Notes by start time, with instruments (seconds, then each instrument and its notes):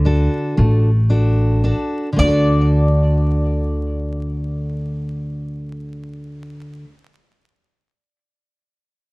Already playing: upright bass D2, steel-string acoustic guitar D3, bouzouki D5
0.05 steel-string acoustic guitar D4 F#4 A4
0.57 upright bass A1, steel-string acoustic guitar A3
1.10 steel-string acoustic guitar D4 F#4 A4
1.64 steel-string acoustic guitar D4 F#4 A4
2.13 steel-string acoustic guitar D3 A3
2.18 upright bass D2, steel-string acoustic guitar D4, bouzouki D5
2.24 steel-string acoustic guitar F#4 A4